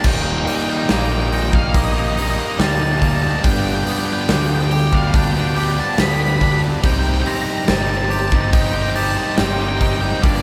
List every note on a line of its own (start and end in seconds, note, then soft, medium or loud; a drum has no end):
0.00 0.86 D#2 medium
0.00 1.32 G4 medium
0.00 3.41 A#4 medium
0.00 10.42 G5 loud
0.00 0.06 A5 medium
0.00 crash loud
0.04 0.42 D#1 medium
0.04 0.88 A#2 loud
0.04 0.45 D#3 loud
0.04 0.47 G3 loud
0.04 0.48 A#3 loud
0.04 3.41 D#4 medium
0.04 0.49 D#4 loud
0.04 3.41 D#5 medium
0.04 0.14 G5 medium
0.04 kick loud
0.14 0.22 G5 medium
0.22 0.30 G5 medium
0.32 0.38 G5 medium
0.39 0.45 G5 medium
0.46 0.69 D#3 medium
0.46 0.68 G3 medium
0.46 0.67 A#3 medium
0.46 0.54 G5 medium
0.46 open hi-hat medium
0.50 0.66 D#4 medium
0.55 0.62 G5 medium
0.62 0.69 G5 medium
0.67 0.88 D#3 medium
0.67 0.89 G3 medium
0.67 0.90 A#3 medium
0.67 0.90 D#4 medium
0.67 0.77 G5 medium
0.78 0.86 G5 medium
0.87 2.37 A#1 loud
0.87 1.73 D#2 loud
0.87 1.74 A#2 loud
0.87 1.28 D#3 loud
0.87 1.29 G3 loud
0.87 1.29 A#3 loud
0.87 1.29 D#4 loud
0.87 0.98 G5 loud
0.87 snare loud
0.87 open hi-hat medium
0.99 1.05 G5 medium
1.06 1.31 D#4 medium
1.06 1.12 G5 medium
1.10 1.30 D#3 medium
1.10 1.31 G3 medium
1.10 1.30 A#3 medium
1.10 1.20 G5 medium
1.20 1.27 G5 medium
1.28 1.34 G5 medium
1.28 muted distorted electric guitar stroke medium
1.32 2.15 D#4 medium
1.32 1.42 G5 medium
1.32 open hi-hat medium
1.42 1.50 G5 medium
1.51 1.95 G3 medium
1.51 1.94 A#3 medium
1.51 1.92 D#4 medium
1.51 kick loud
1.55 1.96 D#3 medium
1.55 1.74 F5 medium
1.74 3.00 A#3 medium
1.74 1.84 D#5 medium
1.74 kick loud
1.74 open hi-hat medium
1.85 1.91 D#5 medium
1.92 2.17 G3 medium
1.92 2.17 A#3 medium
1.92 2.17 D#4 medium
1.92 1.99 D#5 medium
1.97 2.14 D#3 medium
1.97 2.07 D#5 medium
2.08 2.15 D#5 medium
2.15 2.58 D#3 medium
2.15 2.59 G3 medium
2.15 2.59 A#3 medium
2.15 2.60 D#4 medium
2.15 2.22 D#5 medium
2.15 open hi-hat medium
2.22 2.30 D#5 medium
2.30 2.38 D#5 medium
2.37 2.58 D#3 medium
2.37 2.59 G3 medium
2.37 2.59 A#3 medium
2.37 2.60 D#4 medium
2.37 2.60 D#5 loud
2.57 3.33 D2 loud
2.57 3.22 D#2 loud
2.57 3.23 A#2 loud
2.57 2.81 D#3 medium
2.57 2.80 G3 loud
2.57 2.79 A#3 loud
2.57 2.78 D#4 loud
2.57 2.67 A5 loud
2.57 snare loud
2.57 open hi-hat medium
2.68 2.75 A5 medium
2.75 2.83 A5 medium
2.79 3.00 D#3 medium
2.79 3.02 G3 medium
2.79 3.01 A#3 medium
2.79 3.03 D#4 medium
2.83 2.91 A5 medium
2.92 2.99 A5 medium
3.00 3.24 D#3 medium
3.00 3.24 G3 medium
3.00 3.22 A#3 medium
3.00 3.08 A5 medium
3.00 kick medium
3.00 open hi-hat medium
3.04 3.20 D#4 medium
3.08 3.15 A5 medium
3.16 3.22 A5 medium
3.21 3.45 G3 medium
3.21 3.42 A#3 medium
3.21 3.41 D#4 medium
3.21 3.30 A5 medium
3.26 3.43 D#3 medium
3.31 3.38 A5 medium
3.39 3.44 A5 medium
3.44 3.81 G1 loud
3.44 4.28 G2 loud
3.44 4.29 D3 loud
3.44 3.86 G3 loud
3.44 3.87 B3 loud
3.44 3.88 D4 loud
3.44 6.80 F4 medium
3.44 3.90 G4 loud
3.44 6.80 B4 medium
3.44 6.80 D5 medium
3.44 3.51 G5 loud
3.44 kick loud
3.44 open hi-hat loud
3.52 3.59 G5 medium
3.59 3.67 G5 medium
3.67 3.75 G5 medium
3.75 3.82 G5 loud
3.83 4.11 G3 medium
3.83 3.90 G5 medium
3.83 open hi-hat medium
3.88 4.09 B3 medium
3.88 4.08 D4 medium
3.88 4.07 G4 medium
3.88 3.98 G5 loud
3.98 4.05 G5 medium
4.06 4.31 D4 medium
4.06 4.32 G4 medium
4.06 4.13 G5 medium
4.10 4.30 G3 medium
4.10 4.30 B3 medium
4.10 4.21 G5 medium
4.21 4.29 G5 medium
4.29 5.77 D2 medium
4.29 5.14 G2 loud
4.29 5.14 D3 loud
4.29 4.72 G3 loud
4.29 4.71 B3 loud
4.29 4.71 D4 loud
4.29 4.73 G4 loud
4.29 4.38 G5 loud
4.29 snare loud
4.29 open hi-hat medium
4.38 4.46 G5 medium
4.47 4.70 D4 medium
4.47 4.71 G4 medium
4.47 4.54 G5 loud
4.51 4.70 G3 medium
4.51 4.70 B3 medium
4.51 4.62 G5 medium
4.62 4.70 G5 loud
4.71 5.57 G4 medium
4.71 4.79 G5 medium
4.71 muted distorted electric guitar stroke medium
4.71 open hi-hat medium
4.80 4.87 G5 medium
4.87 4.96 G5 medium
4.92 5.37 G3 medium
4.92 5.35 B3 medium
4.92 5.35 D4 medium
4.92 5.34 G4 medium
4.92 5.13 F5 loud
4.92 kick loud
5.14 6.39 D4 medium
5.14 5.24 G5 loud
5.14 kick loud
5.14 open hi-hat medium
5.24 5.32 G5 medium
5.32 5.57 D4 medium
5.32 5.58 G4 medium
5.32 5.39 G5 loud
5.37 5.55 G3 medium
5.37 5.55 B3 medium
5.37 5.47 G5 medium
5.47 5.55 G5 loud
5.55 5.98 G3 medium
5.55 5.98 B3 loud
5.55 5.99 D4 medium
5.55 6.00 G4 medium
5.55 5.63 G5 medium
5.55 open hi-hat medium
5.64 5.71 G5 medium
5.72 5.79 G5 medium
5.77 5.99 G3 medium
5.77 5.98 B3 medium
5.77 5.99 D4 medium
5.77 6.00 G4 medium
5.77 5.99 A5 loud
5.97 6.72 D2 loud
5.97 6.61 G2 loud
5.97 6.62 D3 loud
5.97 6.22 G3 loud
5.97 6.20 B3 loud
5.97 6.19 D4 loud
5.97 6.18 G4 loud
5.97 6.06 B5 loud
5.97 snare loud
5.97 open hi-hat loud
6.07 6.14 B5 medium
6.14 6.21 B5 loud
6.19 6.39 G3 medium
6.19 6.40 B3 medium
6.19 6.40 D4 medium
6.19 6.42 G4 medium
6.19 6.29 B5 medium
6.29 6.36 B5 loud
6.37 6.62 G3 medium
6.37 6.43 B5 medium
6.41 6.61 B3 medium
6.41 6.59 D4 loud
6.41 6.59 G4 medium
6.41 6.51 B5 loud
6.41 kick medium
6.41 open hi-hat medium
6.52 6.60 B5 medium
6.59 6.82 G3 medium
6.59 6.81 B3 medium
6.59 6.80 D4 medium
6.59 6.84 G4 medium
6.81 7.21 C2 loud
6.81 7.64 C3 loud
6.81 7.24 G3 loud
6.81 7.24 C4 loud
6.81 7.26 D#4 loud
6.81 10.20 D#4 medium
6.81 7.27 G4 loud
6.81 10.42 A#4 medium
6.81 10.20 C5 medium
6.81 kick loud
6.81 open hi-hat medium
6.85 6.92 G5 loud
6.93 6.99 G5 medium
6.99 7.06 G5 loud
7.07 7.13 G5 medium
7.14 7.21 G5 medium
7.22 7.66 G3 medium
7.22 7.48 C4 medium
7.22 7.29 G5 medium
7.26 7.47 D#4 medium
7.26 7.45 G4 medium
7.26 7.34 A#5 loud
7.26 open hi-hat medium
7.35 7.41 A#5 medium
7.42 7.69 G4 medium
7.42 7.49 A#5 loud
7.48 7.66 C4 medium
7.48 7.68 D#4 medium
7.48 7.58 A#5 medium
7.58 7.66 A#5 loud
7.66 9.16 G1 loud
7.66 8.52 C3 loud
7.66 8.09 G3 loud
7.66 8.09 C4 loud
7.66 8.09 D#4 loud
7.66 8.10 G4 loud
7.66 7.75 A5 loud
7.66 snare loud
7.66 open hi-hat medium
7.76 7.82 A5 medium
7.83 7.89 A5 loud
7.88 8.10 C4 medium
7.88 8.10 D#4 medium
7.88 8.11 G4 medium
7.88 7.97 A5 medium
7.97 8.04 A5 loud
8.04 8.12 A5 medium
8.10 8.95 G4 medium
8.10 8.19 A5 loud
8.10 muted distorted electric guitar stroke medium
8.10 open hi-hat medium
8.20 8.27 A5 medium
8.28 8.72 G4 medium
8.28 8.34 A5 loud
8.32 8.75 C4 medium
8.32 8.74 D#4 medium
8.32 8.41 A5 medium
8.32 kick loud
8.41 8.48 A5 medium
8.53 9.79 D#4 medium
8.53 8.60 G5 loud
8.53 kick loud
8.53 open hi-hat medium
8.61 8.66 G5 medium
8.67 8.74 G5 loud
8.73 8.93 C4 medium
8.73 8.95 D#4 medium
8.73 8.96 G4 medium
8.73 8.82 G5 medium
8.82 8.89 G5 medium
8.90 9.37 G3 medium
8.90 8.95 G5 medium
8.94 9.37 C4 medium
8.94 9.38 D#4 medium
8.94 9.40 G4 medium
8.94 9.02 A5 loud
8.94 open hi-hat medium
9.03 9.10 A5 medium
9.11 9.17 A5 loud
9.17 9.38 C4 medium
9.17 9.38 D#4 medium
9.17 9.39 G4 medium
9.17 9.23 A5 medium
9.24 9.31 A5 loud
9.32 10.01 C3 loud
9.32 9.37 A5 medium
9.37 10.12 G1 loud
9.37 9.79 G3 loud
9.37 9.60 C4 loud
9.37 9.59 D#4 loud
9.37 9.57 G4 loud
9.37 9.45 G5 loud
9.37 snare loud
9.37 open hi-hat medium
9.46 9.53 G5 medium
9.54 9.62 G5 medium
9.58 9.80 C4 medium
9.58 9.81 D#4 medium
9.58 9.82 G4 medium
9.62 9.68 G5 medium
9.69 9.77 G5 medium
9.78 10.22 G3 medium
9.78 10.03 C4 medium
9.78 9.86 G5 medium
9.78 kick medium
9.78 open hi-hat medium
9.82 10.02 D#4 medium
9.82 10.00 G4 medium
9.86 9.93 G5 medium
9.93 10.01 G5 medium
10.01 10.22 C4 medium
10.01 10.21 D#4 medium
10.01 10.25 G4 medium
10.01 10.09 G5 medium
10.09 10.17 G5 medium
10.17 10.25 G5 medium
10.22 10.42 G1 loud
10.22 10.42 G2 loud
10.22 10.42 D3 loud
10.22 10.42 G3 loud
10.22 10.42 A#3 loud
10.22 10.42 D4 loud
10.22 10.42 F4 medium
10.22 10.42 G4 loud
10.22 10.30 D5 medium
10.22 10.42 D5 medium
10.22 kick loud
10.22 open hi-hat medium
10.30 10.35 D5 medium
10.36 10.42 D5 medium